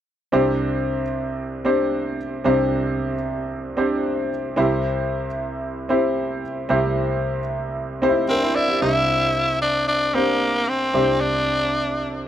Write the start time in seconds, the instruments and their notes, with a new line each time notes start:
0.32 grand piano C2 C3 C4 D4 G4 C5
1.65 grand piano C4 D4 G4 C5
2.44 grand piano C2 C3 C4 D4 G4 C5
3.77 grand piano C4 D4 G4 C5
4.56 grand piano C2 C3 C4 E4 G4 C5
5.89 grand piano C4 E4 G4 C5
6.69 grand piano C2 C3 C4 E4 G4 C5
8.02 grand piano C4 D#4 G4 C5
8.09 grand piano E4
8.29 tenor saxophone C4, grand piano D4 A#4
8.42 grand piano E4 C5
8.55 tenor saxophone E4, grand piano D5
8.69 grand piano G4 E5
8.81 grand piano C2 C3 C4 D4 G4 C5, tenor saxophone E4
9.62 tenor saxophone D4
9.88 tenor saxophone D4
10.14 tenor saxophone A#3, grand piano C4 D4 G4 C5
10.68 tenor saxophone C4
10.94 grand piano C2 C3 C4 D4 G4 C5
11.21 tenor saxophone D4